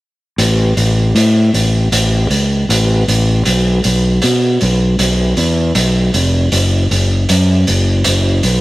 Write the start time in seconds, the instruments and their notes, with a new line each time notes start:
0.38 fingered electric bass A1, closed hi-hat
0.77 fingered electric bass A1, closed hi-hat
1.15 fingered electric bass A2, closed hi-hat
1.54 fingered electric bass A1, closed hi-hat
1.92 fingered electric bass A1, closed hi-hat
2.30 fingered electric bass C#2, closed hi-hat
2.69 fingered electric bass A1, closed hi-hat
3.08 fingered electric bass A1, closed hi-hat
3.45 fingered electric bass B1, closed hi-hat
3.84 fingered electric bass B1, closed hi-hat
4.22 fingered electric bass B2, closed hi-hat
4.61 fingered electric bass B1, closed hi-hat
4.99 fingered electric bass B1, closed hi-hat
5.37 fingered electric bass E2, closed hi-hat
5.75 fingered electric bass B1, closed hi-hat
6.14 fingered electric bass F1, closed hi-hat
6.52 fingered electric bass F#1, closed hi-hat
6.91 fingered electric bass F#1, closed hi-hat
7.29 fingered electric bass F#2, closed hi-hat
7.67 fingered electric bass F#1, closed hi-hat
8.04 fingered electric bass F#1, closed hi-hat
8.43 fingered electric bass B1, closed hi-hat